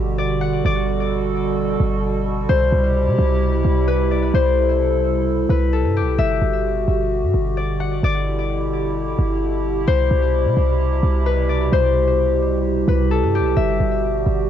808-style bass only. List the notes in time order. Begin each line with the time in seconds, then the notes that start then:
Already playing: G1
0.65 G1
1.80 G1
2.49 C2
2.72 C2
3.07 C3
3.19 C2
3.65 C2
4.34 C2
5.49 C2
5.84 G2
6.01 C2
6.19 G1
6.42 G1
6.88 G1
7.23 G2
7.34 G1
8.03 G1
9.19 G1
9.88 C2
10.11 C2
10.45 C3
10.57 C2
11.03 C2
11.72 C2
12.88 C2
13.23 G2
13.40 C2
13.57 G1
13.80 G1
14.26 G1